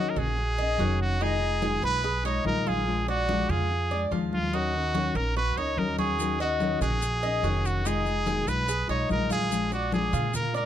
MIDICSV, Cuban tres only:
0, 0, Header, 1, 2, 480
1, 0, Start_track
1, 0, Key_signature, -6, "minor"
1, 0, Tempo, 415225
1, 1393, Time_signature, 4, 2, 24, 8
1, 12317, End_track
2, 0, Start_track
2, 0, Title_t, "Cuban tres"
2, 0, Program_c, 0, 25
2, 0, Note_on_c, 0, 75, 84
2, 177, Note_off_c, 0, 75, 0
2, 191, Note_on_c, 0, 66, 72
2, 657, Note_off_c, 0, 66, 0
2, 675, Note_on_c, 0, 75, 85
2, 907, Note_off_c, 0, 75, 0
2, 917, Note_on_c, 0, 66, 71
2, 1381, Note_off_c, 0, 66, 0
2, 1398, Note_on_c, 0, 63, 88
2, 1861, Note_off_c, 0, 63, 0
2, 1879, Note_on_c, 0, 68, 74
2, 2109, Note_off_c, 0, 68, 0
2, 2120, Note_on_c, 0, 71, 77
2, 2350, Note_off_c, 0, 71, 0
2, 2359, Note_on_c, 0, 68, 73
2, 2590, Note_off_c, 0, 68, 0
2, 2601, Note_on_c, 0, 63, 99
2, 3064, Note_off_c, 0, 63, 0
2, 3083, Note_on_c, 0, 65, 81
2, 3545, Note_off_c, 0, 65, 0
2, 3564, Note_on_c, 0, 74, 75
2, 4026, Note_off_c, 0, 74, 0
2, 4039, Note_on_c, 0, 65, 74
2, 4503, Note_off_c, 0, 65, 0
2, 4521, Note_on_c, 0, 74, 75
2, 4752, Note_off_c, 0, 74, 0
2, 4759, Note_on_c, 0, 65, 67
2, 5224, Note_off_c, 0, 65, 0
2, 5241, Note_on_c, 0, 63, 88
2, 5705, Note_off_c, 0, 63, 0
2, 5715, Note_on_c, 0, 66, 79
2, 5949, Note_off_c, 0, 66, 0
2, 5956, Note_on_c, 0, 70, 75
2, 6189, Note_off_c, 0, 70, 0
2, 6201, Note_on_c, 0, 66, 71
2, 6432, Note_off_c, 0, 66, 0
2, 6445, Note_on_c, 0, 63, 83
2, 6906, Note_off_c, 0, 63, 0
2, 6918, Note_on_c, 0, 66, 83
2, 7383, Note_off_c, 0, 66, 0
2, 7400, Note_on_c, 0, 75, 79
2, 7864, Note_off_c, 0, 75, 0
2, 7881, Note_on_c, 0, 66, 74
2, 8344, Note_off_c, 0, 66, 0
2, 8357, Note_on_c, 0, 75, 76
2, 8589, Note_off_c, 0, 75, 0
2, 8598, Note_on_c, 0, 66, 70
2, 9062, Note_off_c, 0, 66, 0
2, 9077, Note_on_c, 0, 63, 84
2, 9542, Note_off_c, 0, 63, 0
2, 9559, Note_on_c, 0, 68, 76
2, 9790, Note_off_c, 0, 68, 0
2, 9802, Note_on_c, 0, 71, 77
2, 10031, Note_off_c, 0, 71, 0
2, 10041, Note_on_c, 0, 68, 77
2, 10270, Note_off_c, 0, 68, 0
2, 10280, Note_on_c, 0, 63, 92
2, 10742, Note_off_c, 0, 63, 0
2, 10756, Note_on_c, 0, 65, 79
2, 11220, Note_off_c, 0, 65, 0
2, 11234, Note_on_c, 0, 74, 79
2, 11699, Note_off_c, 0, 74, 0
2, 11712, Note_on_c, 0, 65, 74
2, 12177, Note_off_c, 0, 65, 0
2, 12189, Note_on_c, 0, 74, 82
2, 12317, Note_off_c, 0, 74, 0
2, 12317, End_track
0, 0, End_of_file